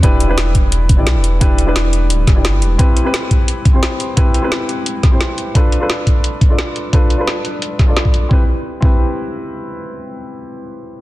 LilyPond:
<<
  \new Staff \with { instrumentName = "Grand piano" } { \time 4/4 \key c \major \tempo 4 = 174 <d' e' g' b'>8. <d' e' g' b'>2 <d' e' g' d''>4~ <d' e' g' d''>16 | <d' e' g' b'>8. <d' e' g' b'>2 <d' e' g' d''>4~ <d' e' g' d''>16 | <c' e' g' b'>8. <c' e' g' b'>2 <c' e' g' c''>4~ <c' e' g' c''>16 | <c' e' g' b'>8. <c' e' g' b'>2 <c' e' g' c''>4~ <c' e' g' c''>16 |
<d' f' a' b'>8. <d' f' a' b'>2 <d' f' a' d''>4~ <d' f' a' d''>16 | <d' f' a' b'>8. <d' f' a' b'>2 <d' f' a' d''>4~ <d' f' a' d''>16 | <c' e' g' b'>16 r4 r16 <c' e' g' b'>2~ <c' e' g' b'>8~ | <c' e' g' b'>1 | }
  \new Staff \with { instrumentName = "Sub bass" } { \clef bass \time 4/4 \key c \major e,,4 e,,4.~ e,,16 b,,8 e,,8.~ | e,,4 e,,4 d,,8 e,,8 g,,8 e,,8 | r1 | r1 |
r1 | r1 | r1 | r1 | }
  \new DrumStaff \with { instrumentName = "Drums" } \drummode { \time 4/4 <hh bd>8 hh8 <hh sn>8 <hh bd>8 hh8 <hh bd>8 <hh sn>8 hh8 | <hh bd>8 hh8 <hh sn>8 hh8 hh8 <hh bd sn>8 <hh sn>8 hh8 | <hh bd>8 hh8 <hh sn>8 <hh bd>8 hh8 <hh bd>8 <hh sn>8 hh8 | <hh bd>8 hh8 <hh sn>8 hh8 hh8 <hh bd sn>8 <hh sn>8 hh8 |
<hh bd>8 hh8 <hh sn>8 <hh bd>8 hh8 <hh bd>8 <hh sn>8 hh8 | <hh bd>8 hh8 <hh sn>8 hh8 hh8 <hh bd sn>8 <hh sn>16 bd16 hh8 | bd4 r8 bd8 r4 r4 | r4 r4 r4 r4 | }
>>